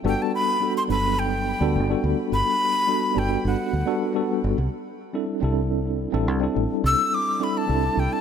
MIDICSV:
0, 0, Header, 1, 4, 480
1, 0, Start_track
1, 0, Key_signature, 1, "major"
1, 0, Tempo, 566038
1, 44, Time_signature, 4, 2, 24, 8
1, 6961, End_track
2, 0, Start_track
2, 0, Title_t, "Flute"
2, 0, Program_c, 0, 73
2, 67, Note_on_c, 0, 79, 100
2, 188, Note_on_c, 0, 81, 90
2, 200, Note_off_c, 0, 79, 0
2, 291, Note_off_c, 0, 81, 0
2, 296, Note_on_c, 0, 83, 106
2, 626, Note_off_c, 0, 83, 0
2, 655, Note_on_c, 0, 84, 99
2, 706, Note_off_c, 0, 84, 0
2, 769, Note_on_c, 0, 83, 104
2, 1009, Note_on_c, 0, 79, 97
2, 1022, Note_off_c, 0, 83, 0
2, 1727, Note_off_c, 0, 79, 0
2, 1981, Note_on_c, 0, 83, 126
2, 2700, Note_on_c, 0, 79, 102
2, 2713, Note_off_c, 0, 83, 0
2, 2932, Note_off_c, 0, 79, 0
2, 2941, Note_on_c, 0, 78, 83
2, 3619, Note_off_c, 0, 78, 0
2, 5819, Note_on_c, 0, 88, 118
2, 6058, Note_on_c, 0, 86, 105
2, 6070, Note_off_c, 0, 88, 0
2, 6304, Note_on_c, 0, 83, 93
2, 6317, Note_off_c, 0, 86, 0
2, 6424, Note_on_c, 0, 81, 103
2, 6436, Note_off_c, 0, 83, 0
2, 6779, Note_on_c, 0, 79, 97
2, 6792, Note_off_c, 0, 81, 0
2, 6893, Note_on_c, 0, 81, 104
2, 6905, Note_off_c, 0, 79, 0
2, 6961, Note_off_c, 0, 81, 0
2, 6961, End_track
3, 0, Start_track
3, 0, Title_t, "Tine electric piano"
3, 0, Program_c, 1, 4
3, 34, Note_on_c, 1, 55, 103
3, 40, Note_on_c, 1, 59, 89
3, 44, Note_on_c, 1, 62, 89
3, 48, Note_on_c, 1, 66, 89
3, 53, Note_on_c, 1, 69, 111
3, 471, Note_off_c, 1, 55, 0
3, 474, Note_off_c, 1, 59, 0
3, 476, Note_off_c, 1, 62, 0
3, 479, Note_off_c, 1, 66, 0
3, 481, Note_off_c, 1, 69, 0
3, 512, Note_on_c, 1, 55, 75
3, 521, Note_on_c, 1, 59, 66
3, 522, Note_on_c, 1, 62, 67
3, 529, Note_on_c, 1, 66, 64
3, 532, Note_on_c, 1, 69, 77
3, 730, Note_off_c, 1, 55, 0
3, 734, Note_off_c, 1, 59, 0
3, 734, Note_off_c, 1, 62, 0
3, 738, Note_off_c, 1, 66, 0
3, 740, Note_off_c, 1, 69, 0
3, 746, Note_on_c, 1, 55, 80
3, 754, Note_on_c, 1, 59, 69
3, 764, Note_on_c, 1, 62, 69
3, 770, Note_on_c, 1, 54, 75
3, 780, Note_on_c, 1, 69, 87
3, 1327, Note_off_c, 1, 55, 0
3, 1331, Note_off_c, 1, 59, 0
3, 1336, Note_off_c, 1, 62, 0
3, 1339, Note_off_c, 1, 54, 0
3, 1343, Note_off_c, 1, 69, 0
3, 1357, Note_on_c, 1, 55, 88
3, 1361, Note_on_c, 1, 59, 76
3, 1366, Note_on_c, 1, 62, 80
3, 1369, Note_on_c, 1, 66, 76
3, 1375, Note_on_c, 1, 69, 93
3, 1572, Note_off_c, 1, 55, 0
3, 1574, Note_off_c, 1, 59, 0
3, 1577, Note_off_c, 1, 62, 0
3, 1578, Note_off_c, 1, 66, 0
3, 1581, Note_off_c, 1, 69, 0
3, 1592, Note_on_c, 1, 55, 81
3, 1603, Note_on_c, 1, 59, 72
3, 1610, Note_on_c, 1, 62, 80
3, 1618, Note_on_c, 1, 66, 81
3, 1625, Note_on_c, 1, 69, 88
3, 2409, Note_off_c, 1, 55, 0
3, 2415, Note_off_c, 1, 59, 0
3, 2418, Note_off_c, 1, 62, 0
3, 2422, Note_off_c, 1, 66, 0
3, 2426, Note_off_c, 1, 69, 0
3, 2434, Note_on_c, 1, 55, 69
3, 2436, Note_on_c, 1, 59, 70
3, 2439, Note_on_c, 1, 62, 70
3, 2445, Note_on_c, 1, 66, 67
3, 2450, Note_on_c, 1, 69, 76
3, 2650, Note_off_c, 1, 55, 0
3, 2651, Note_off_c, 1, 59, 0
3, 2653, Note_off_c, 1, 62, 0
3, 2656, Note_off_c, 1, 66, 0
3, 2658, Note_off_c, 1, 69, 0
3, 2664, Note_on_c, 1, 55, 84
3, 2675, Note_on_c, 1, 59, 71
3, 2679, Note_on_c, 1, 62, 71
3, 2689, Note_on_c, 1, 66, 73
3, 2697, Note_on_c, 1, 69, 87
3, 3246, Note_off_c, 1, 55, 0
3, 3251, Note_off_c, 1, 59, 0
3, 3253, Note_off_c, 1, 62, 0
3, 3258, Note_off_c, 1, 66, 0
3, 3262, Note_off_c, 1, 69, 0
3, 3269, Note_on_c, 1, 55, 82
3, 3273, Note_on_c, 1, 59, 77
3, 3280, Note_on_c, 1, 62, 83
3, 3283, Note_on_c, 1, 66, 78
3, 3285, Note_on_c, 1, 69, 98
3, 3488, Note_off_c, 1, 55, 0
3, 3490, Note_off_c, 1, 59, 0
3, 3494, Note_off_c, 1, 62, 0
3, 3495, Note_off_c, 1, 66, 0
3, 3496, Note_off_c, 1, 69, 0
3, 3513, Note_on_c, 1, 55, 81
3, 3516, Note_on_c, 1, 59, 77
3, 3522, Note_on_c, 1, 62, 77
3, 3523, Note_on_c, 1, 66, 74
3, 3531, Note_on_c, 1, 69, 94
3, 3864, Note_off_c, 1, 55, 0
3, 3866, Note_off_c, 1, 59, 0
3, 3868, Note_off_c, 1, 62, 0
3, 3869, Note_off_c, 1, 66, 0
3, 3873, Note_off_c, 1, 69, 0
3, 4352, Note_on_c, 1, 55, 72
3, 4355, Note_on_c, 1, 60, 66
3, 4359, Note_on_c, 1, 62, 68
3, 4362, Note_on_c, 1, 64, 68
3, 4367, Note_on_c, 1, 69, 85
3, 4570, Note_off_c, 1, 55, 0
3, 4571, Note_off_c, 1, 60, 0
3, 4573, Note_off_c, 1, 62, 0
3, 4574, Note_off_c, 1, 64, 0
3, 4577, Note_off_c, 1, 69, 0
3, 4583, Note_on_c, 1, 55, 74
3, 4592, Note_on_c, 1, 60, 74
3, 4600, Note_on_c, 1, 62, 74
3, 4608, Note_on_c, 1, 64, 76
3, 4616, Note_on_c, 1, 69, 89
3, 5165, Note_off_c, 1, 55, 0
3, 5169, Note_off_c, 1, 60, 0
3, 5174, Note_off_c, 1, 62, 0
3, 5178, Note_off_c, 1, 64, 0
3, 5181, Note_off_c, 1, 69, 0
3, 5191, Note_on_c, 1, 55, 90
3, 5194, Note_on_c, 1, 60, 81
3, 5200, Note_on_c, 1, 62, 81
3, 5203, Note_on_c, 1, 64, 80
3, 5208, Note_on_c, 1, 69, 96
3, 5409, Note_off_c, 1, 55, 0
3, 5410, Note_off_c, 1, 60, 0
3, 5414, Note_off_c, 1, 62, 0
3, 5415, Note_off_c, 1, 64, 0
3, 5418, Note_off_c, 1, 69, 0
3, 5423, Note_on_c, 1, 55, 85
3, 5430, Note_on_c, 1, 60, 77
3, 5438, Note_on_c, 1, 62, 79
3, 5449, Note_on_c, 1, 64, 77
3, 5457, Note_on_c, 1, 69, 86
3, 6244, Note_off_c, 1, 55, 0
3, 6248, Note_off_c, 1, 60, 0
3, 6252, Note_off_c, 1, 62, 0
3, 6258, Note_off_c, 1, 64, 0
3, 6262, Note_off_c, 1, 69, 0
3, 6271, Note_on_c, 1, 55, 76
3, 6275, Note_on_c, 1, 60, 67
3, 6280, Note_on_c, 1, 62, 69
3, 6284, Note_on_c, 1, 64, 70
3, 6287, Note_on_c, 1, 69, 83
3, 6489, Note_off_c, 1, 55, 0
3, 6491, Note_off_c, 1, 60, 0
3, 6493, Note_off_c, 1, 62, 0
3, 6496, Note_off_c, 1, 64, 0
3, 6497, Note_off_c, 1, 69, 0
3, 6500, Note_on_c, 1, 55, 77
3, 6510, Note_on_c, 1, 60, 73
3, 6520, Note_on_c, 1, 62, 72
3, 6528, Note_on_c, 1, 64, 73
3, 6535, Note_on_c, 1, 69, 89
3, 6961, Note_off_c, 1, 55, 0
3, 6961, Note_off_c, 1, 60, 0
3, 6961, Note_off_c, 1, 62, 0
3, 6961, Note_off_c, 1, 64, 0
3, 6961, Note_off_c, 1, 69, 0
3, 6961, End_track
4, 0, Start_track
4, 0, Title_t, "Fingered electric bass"
4, 0, Program_c, 2, 33
4, 37, Note_on_c, 2, 31, 97
4, 120, Note_off_c, 2, 31, 0
4, 760, Note_on_c, 2, 31, 77
4, 1296, Note_off_c, 2, 31, 0
4, 1363, Note_on_c, 2, 38, 92
4, 1488, Note_on_c, 2, 31, 86
4, 1501, Note_off_c, 2, 38, 0
4, 1644, Note_off_c, 2, 31, 0
4, 1727, Note_on_c, 2, 38, 100
4, 1805, Note_off_c, 2, 38, 0
4, 1968, Note_on_c, 2, 31, 95
4, 2045, Note_off_c, 2, 31, 0
4, 2685, Note_on_c, 2, 31, 81
4, 2842, Note_off_c, 2, 31, 0
4, 2923, Note_on_c, 2, 31, 91
4, 3003, Note_off_c, 2, 31, 0
4, 3165, Note_on_c, 2, 38, 88
4, 3244, Note_off_c, 2, 38, 0
4, 3766, Note_on_c, 2, 31, 88
4, 3844, Note_off_c, 2, 31, 0
4, 3883, Note_on_c, 2, 36, 101
4, 3963, Note_off_c, 2, 36, 0
4, 4602, Note_on_c, 2, 36, 81
4, 5137, Note_off_c, 2, 36, 0
4, 5206, Note_on_c, 2, 33, 97
4, 5323, Note_off_c, 2, 33, 0
4, 5323, Note_on_c, 2, 36, 91
4, 5481, Note_off_c, 2, 36, 0
4, 5565, Note_on_c, 2, 33, 92
4, 5644, Note_off_c, 2, 33, 0
4, 5801, Note_on_c, 2, 36, 104
4, 5881, Note_off_c, 2, 36, 0
4, 6523, Note_on_c, 2, 36, 81
4, 6681, Note_off_c, 2, 36, 0
4, 6760, Note_on_c, 2, 36, 88
4, 6841, Note_off_c, 2, 36, 0
4, 6961, End_track
0, 0, End_of_file